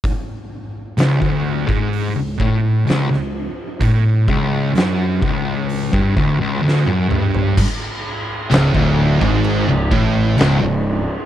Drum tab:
CC |----------------|----------------|x---x---x---x---|
HH |o---o---o---o---|o---o---o-------|----------------|
SD |----o-------oo--|----o-------o---|----o-------o---|
T1 |----------------|-------------o--|----------------|
T2 |----------------|--------------o-|----------------|
FT |----------------|---------------o|----------------|
BD |o----o-o--o-----|o-o---o--oo-----|o----o-o--o-----|